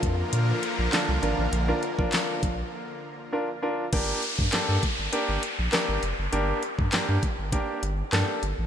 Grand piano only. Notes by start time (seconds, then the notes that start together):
Already playing: D4 F4 A#4
0.92 D4 F4 A4
1.22 D4 F4 A#4
1.68 D4 F4 A#4
1.98 D4 F4 A#4
3.32 D4 F4 A#4
3.62 D4 F4 A#4
3.93 A#3 D4 G4 A#4
4.52 A#3 D4 G4 A4
5.12 A#3 D4 G4 A#4
5.72 A#3 D4 G4 A#4
6.32 A#3 D4 G4 A#4
6.92 A#3 D4 G4 A#4
7.52 A#3 D4 G4 A#4
8.12 A#3 D4 G4 A4